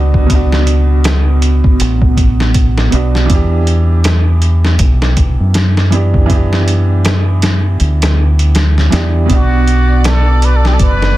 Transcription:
Already playing: fingered electric bass C#2, upright piano B2 B3 D4 F#4
0.14 kick
0.26 upright piano B2 B3, kick, closed hi-hat
0.32 upright piano D4 F#4
0.52 snare
0.67 closed hi-hat
1.04 snare, closed hi-hat
1.42 closed hi-hat
1.64 kick
1.80 fingered electric bass A1, closed hi-hat
2.02 kick
2.17 kick, closed hi-hat
2.40 snare
2.54 kick, closed hi-hat
2.78 snare
2.91 fingered electric bass B1, upright piano B2 B3 D4, closed hi-hat
2.95 upright piano F#4
3.15 snare
3.26 upright piano E3 B3
3.30 fingered electric bass E2, upright piano D4, kick, closed hi-hat
3.35 upright piano G4
3.67 closed hi-hat
4.04 snare, closed hi-hat
4.42 closed hi-hat
4.65 snare
4.79 fingered electric bass B1, kick, closed hi-hat
5.02 snare
5.17 kick, closed hi-hat
5.40 fingered electric bass F#2
5.54 snare, closed hi-hat
5.77 snare
5.90 upright piano E3 B3 D4, closed hi-hat
5.95 upright piano G4
6.14 kick
6.26 upright piano E3 B3, kick, closed hi-hat
6.32 upright piano D4 G4
6.53 snare
6.68 closed hi-hat
7.05 snare, closed hi-hat
7.42 snare, closed hi-hat
7.80 fingered electric bass D2, closed hi-hat
8.02 snare, closed hi-hat
8.39 closed hi-hat
8.55 snare, closed hi-hat
8.78 snare
8.90 fingered electric bass E2, upright piano E3 B3 D4, snare, closed hi-hat
8.94 upright piano G4
9.26 upright piano B2 B3, kick, closed hi-hat
9.30 fingered electric bass B1, upright piano D4, muted trumpet F#4, violin section D5
9.34 upright piano F#4
9.67 closed hi-hat
10.04 muted trumpet A4, snare, closed hi-hat
10.42 muted trumpet B4, closed hi-hat
10.56 muted trumpet A4
10.65 muted trumpet G4, snare
10.74 muted trumpet A4
10.79 fingered electric bass F#1, muted trumpet B4, kick, closed hi-hat
11.02 snare

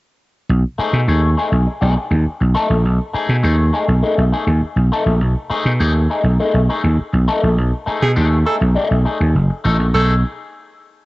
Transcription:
0.49 slap bass B1
0.78 clean electric guitar A3 D#4 G#4, muted slap bass stroke
0.93 slap bass B2
1.08 slap bass D#2, clean electric guitar A3 D#4 G#4
1.24 muted clean electric guitar stroke
1.37 clean electric guitar A3 D#4 G#4
1.52 slap bass B1, muted clean electric guitar stroke
1.67 muted clean electric guitar stroke
1.81 slap bass B1, clean electric guitar A3 D#4 G#4
1.96 muted clean electric guitar stroke
2.11 slap bass D#2, muted clean electric guitar stroke
2.26 muted slap bass stroke
2.40 slap bass B1, muted clean electric guitar stroke
2.55 clean electric guitar A3 D#4 A4
2.70 slap bass A#1, muted clean electric guitar stroke
2.85 slap bass B1
3.13 clean electric guitar A3 D#4 G#4, muted slap bass stroke
3.29 slap bass B2
3.43 slap bass D#2, clean electric guitar A3 D#4 G#4
3.58 muted clean electric guitar stroke
3.73 clean electric guitar A3 D#4 G#4
3.88 slap bass B1, muted clean electric guitar stroke
4.03 clean electric guitar A3 D#4 G#4
4.17 slap bass B1, muted clean electric guitar stroke
4.32 clean electric guitar A3 D#4 G#4
4.47 slap bass D#2, muted clean electric guitar stroke
4.62 muted slap bass stroke
4.76 slap bass B1, muted clean electric guitar stroke
4.92 clean electric guitar A3 D#4 A4
5.06 slap bass A#1, muted clean electric guitar stroke
5.21 slap bass B1
5.50 clean electric guitar A3 D#4 G#4, muted slap bass stroke
5.65 slap bass B2
5.80 slap bass D#2, clean electric guitar A3 D#4 G#4
5.95 muted clean electric guitar stroke
6.10 clean electric guitar A3 D#4 G#4
6.24 slap bass B1, muted clean electric guitar stroke
6.40 clean electric guitar A3 D#4 G#4
6.54 slap bass B1, muted clean electric guitar stroke
6.69 clean electric guitar A3 D#4 G#4
6.84 slap bass D#2, muted clean electric guitar stroke
6.99 muted slap bass stroke
7.13 slap bass B1, muted clean electric guitar stroke
7.28 clean electric guitar A3 D#4 A4
7.43 slap bass A#1, muted clean electric guitar stroke
7.58 slap bass B1
7.86 clean electric guitar A3 D#4 G#4, muted slap bass stroke
8.02 slap bass B2, tenor saxophone G#4
8.16 slap bass D#2, clean electric guitar A3 D#4 G#4
8.31 muted clean electric guitar stroke
8.46 clean electric guitar A3 D#4 G#4, tenor saxophone A4
8.60 slap bass B1, muted clean electric guitar stroke
8.75 clean electric guitar A3 D#4 G#4
8.90 slap bass B1, muted clean electric guitar stroke
9.05 clean electric guitar A3 D#4 G#4
9.20 slap bass D#2, muted clean electric guitar stroke
9.35 slap bass F#1
9.50 muted clean electric guitar stroke
9.64 slap bass A1, clean electric guitar A3 D#4 A4
9.79 slap bass A#1, muted clean electric guitar stroke
9.94 slap bass B1, clean electric guitar A3 D#4 G#4, tenor saxophone A4

